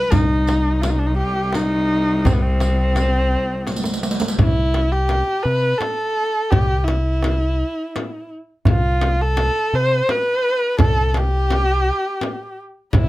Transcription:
Already playing: cello C2, kamancheh B4
0.11 cello C2, picked electric bass C2, kamancheh D#4, riq, frame drum, tombak dum
0.47 riq, tombak tek, frame drum
0.81 kamancheh F4, riq, tombak tek, frame drum
0.90 kamancheh D#4
0.98 kamancheh D4
1.06 kamancheh D#4
1.18 kamancheh G4
1.53 kamancheh D#4, riq, tombak tek, frame drum
2.25 picked electric bass C2, kamancheh C4, riq, frame drum, tombak dum
2.33 kamancheh B3
2.42 kamancheh C4
2.60 riq, tombak tek, frame drum
2.96 riq, tombak tek, frame drum
3.31 tombak ka
3.67 riq, tombak tek, frame drum
3.76 riq
3.84 riq, tombak ka
3.94 riq
4.03 riq, tombak tek
4.11 riq
4.20 riq, tombak ka
4.28 riq
4.38 picked electric bass C2, kamancheh E4, frame drum, tombak dum
4.74 tombak tek, frame drum
4.92 kamancheh G4
5.09 tombak tek, frame drum
5.43 picked electric bass C3, kamancheh B4
5.78 kamancheh A4, tombak tek, frame drum
6.50 picked electric bass C2, kamancheh G4, tombak dum, frame drum
6.84 kamancheh E4, frame drum
6.88 tombak tek
7.23 tombak tek, frame drum
7.96 tombak tek, frame drum
8.65 picked electric bass C2, kamancheh F4, tombak dum, frame drum
9.01 tombak tek, frame drum
9.21 kamancheh A4
9.37 tombak tek, frame drum
9.73 picked electric bass C3, kamancheh C5
10.09 kamancheh B4, tombak tek, frame drum
10.79 picked electric bass C2, kamancheh A4, frame drum, tombak dum
11.09 kamancheh A4
11.14 kamancheh G4, tombak tek, frame drum
11.50 tombak tek, frame drum
11.87 tombak ka
12.21 tombak tek, frame drum
12.93 picked electric bass C2, kamancheh E4, frame drum, tombak dum

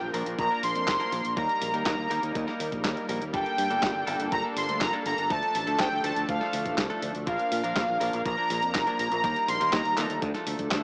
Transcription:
Already playing: analog synth pad F3 A#3 D4 A#4
0.02 fingered electric bass A#1
0.14 fingered electric bass A#1, clean electric guitar F3 A#3 D4 A#4, open hi-hat
0.26 fingered electric bass A#1, closed hi-hat
0.39 fingered electric bass A#1, analog polysynth A#5, kick, closed hi-hat
0.50 clean electric guitar F3 A#3 D4 A#4
0.63 fingered electric bass A#1, analog polysynth C6, open hi-hat
0.75 fingered electric bass F2, closed hi-hat
0.88 fingered electric bass F1, kick, snare, clap, closed hi-hat
1.00 clean electric guitar F3 A#3 D4 A#4, closed hi-hat
1.12 fingered electric bass A#1, open hi-hat
1.25 fingered electric bass A#1, closed hi-hat
1.37 fingered electric bass D#2, clean electric guitar G3 A#3 D#4 A#4, analog synth pad G3 D#4, analog polysynth A#5, kick, closed hi-hat
1.49 closed hi-hat
1.62 fingered electric bass A#1, open hi-hat
1.74 fingered electric bass D#2, clean electric guitar G3 A#3 D#4 A#4, closed hi-hat
1.86 fingered electric bass D#2, analog polysynth A#5, kick, snare, clap, closed hi-hat
1.98 fingered electric bass D#2
2.10 fingered electric bass D#2, clean electric guitar G3 A#3 D#4 A#4, open hi-hat
2.23 fingered electric bass D#2, closed hi-hat
2.35 fingered electric bass D#2, kick, closed hi-hat
2.47 clean electric guitar G3 A#3 D#4 A#4, snare
2.60 fingered electric bass D#2, open hi-hat
2.72 fingered electric bass A#1, kick, closed hi-hat
2.84 fingered electric bass D#2, clean electric guitar G3 A#3 D#4 A#4, kick, snare, clap, closed hi-hat
2.97 closed hi-hat
3.09 fingered electric bass A#1, clean electric guitar G3 A#3 D#4 A#4, open hi-hat
3.21 fingered electric bass D#2, closed hi-hat
3.33 fingered electric bass G1, clean electric guitar G3 A#3 D4 A4, analog synth pad A#3 D4 A4, analog polysynth G5, kick, closed hi-hat
3.46 closed hi-hat
3.58 fingered electric bass G2, open hi-hat
3.70 fingered electric bass G1, clean electric guitar G3 A#3 D4 A4, closed hi-hat
3.83 fingered electric bass G1, kick, snare, clap, closed hi-hat
3.95 fingered electric bass G1
4.07 fingered electric bass G1, clean electric guitar G3 A#3 D4 A4, open hi-hat
4.20 fingered electric bass G1, closed hi-hat
4.32 fingered electric bass G1, analog polysynth A#5, kick, closed hi-hat
4.44 clean electric guitar G3 A#3 D4 A4
4.56 fingered electric bass G1, analog polysynth C6, open hi-hat
4.69 fingered electric bass D2, closed hi-hat
4.81 fingered electric bass F1, analog polysynth A#5, kick, snare, clap, closed hi-hat
4.93 clean electric guitar G3 A#3 D4 A4, closed hi-hat
5.06 fingered electric bass G1, analog polysynth A#5, open hi-hat
5.18 fingered electric bass G1, closed hi-hat
5.30 fingered electric bass D2, clean electric guitar F3 A3 D4 A4, analog synth pad F3 A3, analog polysynth A5, kick, closed hi-hat
5.43 closed hi-hat
5.55 fingered electric bass A1, analog polysynth A5, open hi-hat
5.67 fingered electric bass D2, clean electric guitar F3 A3 D4 A4, closed hi-hat
5.79 fingered electric bass D2, analog polysynth G5, kick, snare, clap, closed hi-hat
5.92 fingered electric bass D2
6.04 fingered electric bass D2, clean electric guitar F3 A3 D4 A4, analog polysynth A5, open hi-hat
6.16 fingered electric bass D2, closed hi-hat
6.29 fingered electric bass D2, analog polysynth F5, kick, closed hi-hat
6.41 clean electric guitar F3 A3 D4 A4, snare
6.53 fingered electric bass D2, open hi-hat
6.66 fingered electric bass A1, kick, closed hi-hat
6.78 fingered electric bass C2, kick, snare, clap, closed hi-hat
6.90 clean electric guitar F3 A3 D4 A4, closed hi-hat
7.02 fingered electric bass D2, open hi-hat
7.15 fingered electric bass D2, closed hi-hat
7.27 fingered electric bass A#1, clean electric guitar F3 A#3 D4 A#4, analog synth pad A#3 A#4, analog polysynth F5, kick, closed hi-hat
7.39 closed hi-hat
7.52 fingered electric bass A#2, open hi-hat
7.64 fingered electric bass A#1, clean electric guitar F3 A#3 D4 A#4, closed hi-hat
7.76 fingered electric bass A#1, kick, snare, clap, closed hi-hat
7.89 fingered electric bass A#1
8.00 fingered electric bass A#1, clean electric guitar F3 A#3 D4 A#4, open hi-hat
8.13 fingered electric bass A#1, closed hi-hat
8.26 fingered electric bass A#1, analog polysynth A#5, kick, closed hi-hat
8.37 clean electric guitar F3 A#3 D4 A#4
8.50 fingered electric bass A#1, open hi-hat
8.62 fingered electric bass F2, closed hi-hat
8.75 fingered electric bass F1, kick, snare, clap, closed hi-hat
8.87 clean electric guitar F3 A#3 D4 A#4, closed hi-hat
8.99 fingered electric bass A#1, analog polysynth A#5, open hi-hat
9.11 fingered electric bass A#1, closed hi-hat
9.24 fingered electric bass D#2, clean electric guitar G3 A#3 D#4 A#4, analog synth pad G3 D#4 A#4, kick, closed hi-hat
9.36 closed hi-hat
9.48 fingered electric bass A#1, analog polysynth C6, open hi-hat
9.60 fingered electric bass D#2, clean electric guitar G3 A#3 D#4 A#4, closed hi-hat
9.73 fingered electric bass D#2, analog polysynth A#5, kick, snare, clap, closed hi-hat
9.85 fingered electric bass D#2, closed hi-hat
9.97 fingered electric bass D#2, clean electric guitar F3 A3 D4 A4, clap, open hi-hat
10.10 fingered electric bass D#2, closed hi-hat
10.22 fingered electric bass D2, analog synth pad F3 A3 D4 A4, kick, closed hi-hat
10.34 clean electric guitar F3 A3 D4 A4, snare, closed hi-hat
10.47 fingered electric bass D2, open hi-hat
10.59 fingered electric bass D2, kick, closed hi-hat
10.71 fingered electric bass D2, clean electric guitar F3 A3 D4 A4, kick, snare, clap, closed hi-hat

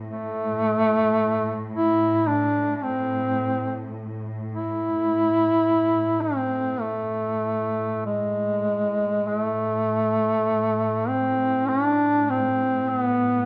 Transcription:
Already playing: string section A2
0.07 duduk A3
1.74 duduk E4
2.27 duduk D4
2.76 duduk D4
2.83 duduk C4
4.52 duduk E4
6.21 duduk C4
6.81 duduk A3
8.05 duduk G#3
9.27 string section A2, duduk G#3
9.38 duduk A3
11.08 duduk C4
11.68 duduk D4
12.30 duduk C4
12.89 duduk B3

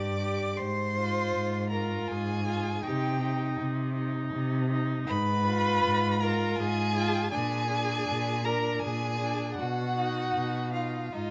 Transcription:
Already playing: cello G2, viola G4, violin D5 D6
0.21 viola G4
0.57 cello G#2, violin C5 C6
0.97 viola F4
1.35 cello G#2
1.70 viola F4, violin A#4 A#5
2.08 cello G#2, violin G#4 G#5
2.46 viola F4
2.83 cello C3, viola D#4, violin G4 G5
3.21 viola D#4
3.59 cello C3
3.95 viola D#4
4.33 cello C3
4.70 viola D#4
5.07 cello G#2, violin B4 B5
5.45 viola F4
5.83 cello G#2
6.21 viola F4, violin A#4 A#5
6.57 cello G#2, violin G#4 G#5
6.95 viola F4
7.32 cello A#2, viola D4, violin G#4 G#5
7.70 viola D4
8.08 cello A#2
8.44 viola D4, violin A#4 A#5
8.80 cello A#2, violin G#5
8.84 violin G#4
9.20 viola D4
9.55 cello B2, violin F#5
9.59 violin F#4
9.96 viola D#4
10.35 cello B2
10.73 viola D#4, violin F4 F5
11.13 cello G#2, violin D#4 D#5, viola F4

